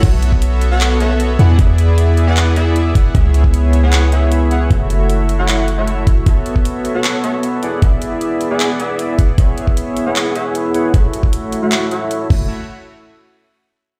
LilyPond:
<<
  \new Staff \with { instrumentName = "Supersaw synth" } { \time 4/4 \key fis \minor \tempo 4 = 154 <b fis' a' cis'' e''>4.~ <b fis' a' cis'' e''>16 <b fis' a' cis'' fis''>8. <b fis' a' cis'' e''>4 <b e' gis' d'' fis''>8 | <b e' gis' d'' e''>4.~ <b e' gis' d'' e''>16 <b e' gis' d'' fis''>8. <b e' gis' d'' e''>4 <b e' gis' d'' fis''>8 | <b e' gis' cis'' e''>4.~ <b e' gis' cis'' e''>16 <b e' gis' cis'' fis''>8. <b e' gis' cis'' e''>4 <b e' gis' cis'' fis''>8 | <a e' fis' cis'' e''>4.~ <a e' fis' cis'' e''>16 <a e' fis' cis'' fis''>8. r16 <a e' fis' cis'' e''>4~ <a e' fis' cis'' e''>16 |
<b fis' a' cis'' e''>4.~ <b fis' a' cis'' e''>16 <b fis' a' cis'' fis''>8. <b fis' a' cis'' e''>4 <b e' gis' d'' fis''>8 | <b e' gis' d'' e''>4.~ <b e' gis' d'' e''>16 <b e' gis' d'' fis''>8. <b e' gis' d'' e''>4 <b e' gis' d'' fis''>8 | <b e' gis' cis'' e''>4.~ <b e' gis' cis'' e''>16 <b e' gis' cis'' fis''>8. <b e' gis' cis'' e''>4 <b e' gis' cis'' fis''>8 | <a e' fis' cis'' e''>4.~ <a e' fis' cis'' e''>16 <a e' fis' cis'' fis''>8. <a e' fis' cis'' e''>4 <a e' fis' cis'' e''>8 |
r1 | }
  \new Staff \with { instrumentName = "808-style bass" } { \clef bass \time 4/4 \key fis \minor b,,2.~ b,,8 e,8~ | e,2.~ e,8 r8 | cis,1 | fis,,1 |
r1 | r1 | r1 | r2. r8 fis,,8 |
r1 | }
  \new DrumStaff \with { instrumentName = "Drums" } \drummode { \time 4/4 <cymc hh bd>8 hh16 bd16 hh8 hh8 <hc hh>8 hh8 hh8 hh8 | <hh bd>8 hh8 hh8 hh8 <hc hh>8 hh8 hh8 <hh bd>8 | <hh bd>8 hh16 bd16 hh8 hh8 <hc hh>8 hh8 hh8 hh8 | <hh bd>8 hh8 hh8 hh8 <hc hh>8 hh8 hh8 <hh bd>8 |
<hh bd>8 hh16 bd16 hh8 hh8 <hc hh>8 hh8 hh8 hh8 | <hh bd>8 hh8 hh8 hh8 <hc hh>8 hh8 hh8 <hh bd>8 | <hh bd>8 hh16 bd16 hh8 hh8 <hc hh>8 hh8 hh8 hh8 | <hh bd>8 hh16 bd16 hh8 hh8 <hc hh>8 hh8 hh8 <cymc bd>8 |
r4 r4 r4 r4 | }
>>